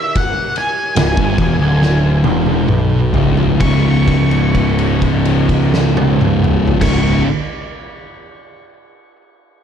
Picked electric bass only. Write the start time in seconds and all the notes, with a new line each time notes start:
0.96 C#1
1.17 G1
1.38 E1
1.59 D1
2.24 E1
2.68 B1
3.13 C#1
3.60 C#1
6.81 C#1